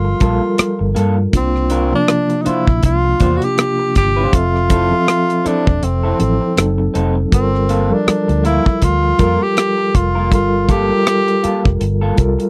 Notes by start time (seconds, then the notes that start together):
Already playing: G1 F3 G3 F4 A4 A#4
0.05 muted clean electric guitar stroke
0.20 A#1 G3 A#3 F4 A4 A#4, kick, closed hi-hat
0.42 muted clean electric guitar stroke
0.58 muted clean electric guitar stroke, muted fingered electric bass stroke, cross-stick, closed hi-hat
0.79 G1, muted clean electric guitar stroke
0.95 G2 A#3 F4 A4, closed hi-hat
1.17 muted clean electric guitar stroke
1.32 C2 C3 A#3 D4 F4, kick, closed hi-hat
1.36 C4
1.56 cross-stick
1.70 D4 F4 A#4, closed hi-hat
1.92 C3 F3 A#3 D4
2.08 muted clean electric guitar stroke, cross-stick, closed hi-hat
2.30 muted clean electric guitar stroke, closed hi-hat
2.42 D4 D#4
2.46 E4 F4 C5, muted fingered electric bass stroke, closed hi-hat
2.67 A#1, muted clean electric guitar stroke, kick
2.83 C2 F4, muted clean electric guitar stroke, kick, closed hi-hat
3.05 muted clean electric guitar stroke
3.20 E2 C3 A#3 D4 F4 C5, kick, closed hi-hat
3.37 F#4
3.42 G4, muted clean electric guitar stroke, closed hi-hat
3.58 muted clean electric guitar stroke, cross-stick, closed hi-hat
3.79 muted clean electric guitar stroke
3.95 G1 G4, kick, closed hi-hat
4.16 D4 F4 C5
4.32 F1 F3 C4 F4 A4 E5, kick, closed hi-hat
4.56 cross-stick
4.70 C4 E4 A4, kick, closed hi-hat
4.90 F3 C4 A4 E5
5.07 muted clean electric guitar stroke, cross-stick, closed hi-hat
5.29 muted clean electric guitar stroke, closed hi-hat
5.45 C4 D4 E4 A4, muted fingered electric bass stroke, closed hi-hat
5.66 E1, muted clean electric guitar stroke, kick
5.82 F1 C4, muted clean electric guitar stroke, closed hi-hat
6.03 C4 E4 A4
6.19 A1 F3 C4 E4 A4, muted clean electric guitar stroke, closed hi-hat
6.41 muted clean electric guitar stroke
6.56 F#1 F#3 C4 D#4 A4, muted clean electric guitar stroke, cross-stick, closed hi-hat
6.78 muted clean electric guitar stroke
6.94 F1 C4 D#4 A4, closed hi-hat
7.16 muted clean electric guitar stroke
7.31 G1 G3 C4 F4 A4 A#4, kick, closed hi-hat
7.55 cross-stick
7.69 A#3 F4 A4, closed hi-hat
7.90 F3 G3 D4 A4 A#4
8.07 muted clean electric guitar stroke, muted fingered electric bass stroke, cross-stick, closed hi-hat
8.28 D2, muted clean electric guitar stroke, closed hi-hat
8.44 A#3 E4 F4 A#4, closed hi-hat
8.66 muted clean electric guitar stroke, kick
8.81 D2 F4, muted clean electric guitar stroke, kick, closed hi-hat
9.03 muted clean electric guitar stroke
9.18 F2 G3 A#3 F4 A4 A#4, kick, closed hi-hat
9.41 G4, muted clean electric guitar stroke
9.56 muted clean electric guitar stroke, cross-stick, closed hi-hat
9.78 muted clean electric guitar stroke
9.95 F1 F4, kick, closed hi-hat
10.15 A#3 F4 A#4
10.30 G1 G3 F4 A4 A#4, kick, closed hi-hat
10.34 F4
10.68 A#3 F4 G4 A4, kick, closed hi-hat
10.89 G3 F4 A4 A#4
11.06 muted clean electric guitar stroke, cross-stick, closed hi-hat
11.28 muted clean electric guitar stroke, closed hi-hat
11.43 A#3 F4 A4, muted fingered electric bass stroke, closed hi-hat
11.64 F1, muted clean electric guitar stroke, kick
11.80 G1, muted clean electric guitar stroke, closed hi-hat
12.01 A#3 F4 A4
12.16 C2 G3 F4 A4 A#4, kick, closed hi-hat
12.39 muted clean electric guitar stroke, closed hi-hat